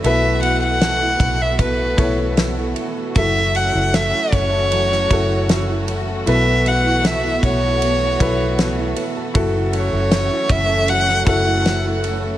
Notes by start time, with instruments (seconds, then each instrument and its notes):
Already playing: string section E3 A3, steel-string acoustic guitar F#3 C#4 E4
0.04 fingered electric bass B1, steel-string acoustic guitar B2 A4, grand piano B2 E4 A4 B4, string section B3 F#4, violin E5, ride
0.24 steel-string acoustic guitar E4
0.43 steel-string acoustic guitar B3, violin F#5, ride
0.62 steel-string acoustic guitar E4, violin F#5
0.81 steel-string acoustic guitar A4, snare, ride
1.02 steel-string acoustic guitar E4
1.20 fingered electric bass B1, steel-string acoustic guitar B3, kick, ride
1.41 steel-string acoustic guitar A4, violin E5
1.59 steel-string acoustic guitar B2 A4, violin B4, kick, ride
1.80 steel-string acoustic guitar E4
1.97 fingered electric bass B1, steel-string acoustic guitar B3, grand piano E4 A4 C#5, kick, ride
2.19 steel-string acoustic guitar E4
2.37 steel-string acoustic guitar A4, snare, ride
2.58 steel-string acoustic guitar E4
2.76 steel-string acoustic guitar B3, ride
2.97 steel-string acoustic guitar A4
3.15 fingered electric bass F#1, string section E3 C#4, steel-string acoustic guitar F#3 A4, grand piano E4 F#4 A4, violin E5, kick, ride
3.36 steel-string acoustic guitar E4
3.55 steel-string acoustic guitar C#4, violin F#5, ride
3.74 fingered electric bass F#1, steel-string acoustic guitar E4
3.94 steel-string acoustic guitar A4, violin E5, snare, ride
4.14 steel-string acoustic guitar E4
4.32 fingered electric bass F#1, steel-string acoustic guitar C#4, violin C#5, kick, ride
4.53 steel-string acoustic guitar A4
4.72 steel-string acoustic guitar F#3 A4, ride
4.91 steel-string acoustic guitar E4, snare
5.10 fingered electric bass F#1, grand piano E4 F#4 A4, kick, ride
5.30 steel-string acoustic guitar E4
5.49 steel-string acoustic guitar A4, snare, ride
5.69 steel-string acoustic guitar E4
5.88 steel-string acoustic guitar C#4, ride
6.08 steel-string acoustic guitar A4
6.26 fingered electric bass B1, grand piano B2 E4 A4 B4, steel-string acoustic guitar B2 A4, string section B3, violin E5, ride
6.47 steel-string acoustic guitar E4
6.66 steel-string acoustic guitar B3, violin F#5, ride
6.86 steel-string acoustic guitar E4
7.05 steel-string acoustic guitar A4, violin E5, snare, ride
7.25 steel-string acoustic guitar E4
7.43 fingered electric bass B1, steel-string acoustic guitar B3, violin C#5, kick, ride
7.64 steel-string acoustic guitar A4
7.82 steel-string acoustic guitar B2 A4, ride
8.02 steel-string acoustic guitar E4
8.20 fingered electric bass B1, grand piano E4 A4 B4, kick, ride
8.40 steel-string acoustic guitar E4
8.59 steel-string acoustic guitar A4, snare, ride
8.78 steel-string acoustic guitar E4
8.96 steel-string acoustic guitar B3, ride
9.17 steel-string acoustic guitar A4
9.34 fingered electric bass F#1, steel-string acoustic guitar F#3 A4, string section A3 C#4, grand piano E4 F#4 A4, kick, ride
9.54 steel-string acoustic guitar E4
9.73 steel-string acoustic guitar C#4, violin C#5, ride
9.92 fingered electric bass F#1, steel-string acoustic guitar E4
10.11 steel-string acoustic guitar A4, snare, ride
10.31 steel-string acoustic guitar E4
10.49 fingered electric bass F#1, steel-string acoustic guitar C#4, violin E5, kick, ride
10.69 steel-string acoustic guitar A4
10.88 steel-string acoustic guitar F#3 A4, violin F#5, ride
11.08 steel-string acoustic guitar E4, snare
11.26 fingered electric bass F#1, steel-string acoustic guitar C#4, grand piano E4 F#4 A4, violin F#5, kick, ride
11.46 steel-string acoustic guitar E4
11.66 steel-string acoustic guitar A4, snare, ride
11.85 steel-string acoustic guitar E4
12.04 steel-string acoustic guitar C#4, ride
12.23 steel-string acoustic guitar A4